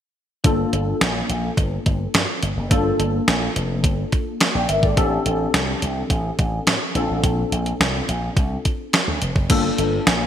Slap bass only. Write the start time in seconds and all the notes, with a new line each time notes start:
0.44 G1
0.73 G1
1.01 A#1
1.29 A#1
1.57 G1
1.86 G1
2.14 G2
2.43 G1
2.57 F#1
2.71 G1
2.99 G1
3.28 A#1
3.56 F1
3.84 G1
4.55 A#1
4.69 G1
4.83 G#1
4.97 A1
5.26 A1
5.54 C2
5.82 C2
6.10 A1
6.39 A1
6.67 A2
6.95 A#1
7.09 A1
7.24 A#1
7.52 A#1
7.80 C2
8.09 A#1
8.37 C2
9.08 D2
9.22 F1
9.36 F#1
9.50 G1
9.78 G1
10.07 A#1